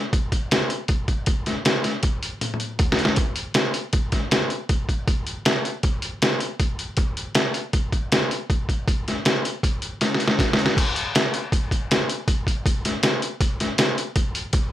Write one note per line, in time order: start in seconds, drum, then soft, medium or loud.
0.13 kick loud
0.13 closed hi-hat medium
0.32 kick medium
0.32 closed hi-hat medium
0.51 snare loud
0.51 closed hi-hat medium
0.70 closed hi-hat medium
0.88 kick medium
0.88 closed hi-hat medium
1.08 kick medium
1.08 closed hi-hat medium
1.26 kick medium
1.26 closed hi-hat medium
1.46 snare soft
1.46 closed hi-hat medium
1.65 snare medium
1.65 closed hi-hat medium
1.84 snare soft
1.84 closed hi-hat medium
2.03 kick medium
2.03 closed hi-hat medium
2.23 closed hi-hat medium
2.41 closed hi-hat medium
2.41 high tom soft
2.54 high tom soft
2.60 closed hi-hat medium
2.79 kick medium
2.79 closed hi-hat medium
2.79 mid tom medium
2.92 snare medium
2.99 closed hi-hat medium
3.05 snare medium
3.16 kick medium
3.16 closed hi-hat medium
3.36 closed hi-hat medium
3.54 snare loud
3.54 closed hi-hat medium
3.74 closed hi-hat medium
3.93 kick loud
3.93 closed hi-hat medium
4.12 kick medium
4.12 snare soft
4.12 closed hi-hat medium
4.31 snare medium
4.31 closed hi-hat medium
4.50 closed hi-hat soft
4.69 kick medium
4.69 closed hi-hat medium
4.89 kick medium
4.89 closed hi-hat medium
5.08 kick loud
5.08 closed hi-hat medium
5.27 closed hi-hat medium
5.45 snare medium
5.45 closed hi-hat medium
5.65 closed hi-hat medium
5.83 kick medium
5.83 closed hi-hat medium
6.02 closed hi-hat medium
6.22 snare loud
6.22 closed hi-hat medium
6.40 closed hi-hat medium
6.60 kick medium
6.60 closed hi-hat medium
6.79 closed hi-hat medium
6.97 kick loud
6.97 closed hi-hat medium
7.17 closed hi-hat medium
7.35 snare medium
7.35 closed hi-hat medium
7.54 closed hi-hat medium
7.73 kick medium
7.73 closed hi-hat medium
7.92 kick medium
7.92 closed hi-hat medium
8.12 snare loud
8.12 closed hi-hat medium
8.31 closed hi-hat medium
8.50 kick medium
8.50 closed hi-hat medium
8.69 kick medium
8.69 closed hi-hat soft
8.88 kick loud
8.88 closed hi-hat medium
9.08 snare soft
9.08 closed hi-hat soft
9.25 snare loud
9.25 closed hi-hat medium
9.45 closed hi-hat medium
9.63 kick medium
9.63 closed hi-hat medium
9.82 closed hi-hat medium
10.01 snare medium
10.01 closed hi-hat medium
10.14 snare soft
10.20 closed hi-hat medium
10.28 snare medium
10.39 kick medium
10.39 snare medium
10.39 closed hi-hat medium
10.53 snare medium
10.59 closed hi-hat medium
10.66 snare medium
10.77 kick loud
10.77 closed hi-hat medium
10.77 crash loud
10.96 closed hi-hat medium
11.15 snare loud
11.15 closed hi-hat medium
11.34 closed hi-hat medium
11.52 kick loud
11.52 closed hi-hat medium
11.71 kick medium
11.71 closed hi-hat medium
11.91 snare loud
11.91 closed hi-hat medium
12.09 closed hi-hat medium
12.28 kick loud
12.28 closed hi-hat medium
12.47 kick medium
12.47 closed hi-hat medium
12.66 kick loud
12.66 closed hi-hat medium
12.85 snare soft
12.85 closed hi-hat medium
13.03 snare loud
13.03 closed hi-hat loud
13.22 closed hi-hat medium
13.41 kick loud
13.41 closed hi-hat medium
13.60 snare soft
13.60 closed hi-hat medium
13.78 snare loud
13.78 closed hi-hat loud
13.98 closed hi-hat medium
14.16 kick loud
14.16 closed hi-hat medium
14.35 closed hi-hat medium
14.53 kick loud
14.53 closed hi-hat medium